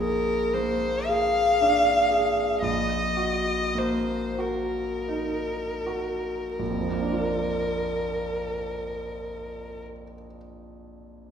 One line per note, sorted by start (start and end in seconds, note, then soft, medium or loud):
0.00 2.59 A#1 soft
0.00 0.87 G#4 soft
0.00 0.55 A#4 soft
0.54 1.40 A#3 soft
0.54 1.08 C5 soft
1.07 1.91 G#4 soft
1.07 2.62 F5 medium
1.61 2.42 D4 soft
2.11 2.62 G#4 soft
2.62 6.55 A#1 soft
2.62 3.79 D#5 medium
3.17 4.14 F#4 soft
3.75 4.80 A#3 soft
3.75 4.41 C5 soft
4.38 5.54 F#4 soft
4.38 6.56 A#4 soft
5.08 6.31 D#4 soft
5.87 6.59 F#4 soft
6.57 9.82 A#1 soft
6.57 9.80 A#4 soft
6.69 9.92 F2 soft
6.80 10.03 F3 soft
6.91 10.14 A#3 soft
7.02 10.24 D4 soft
7.12 10.35 F4 soft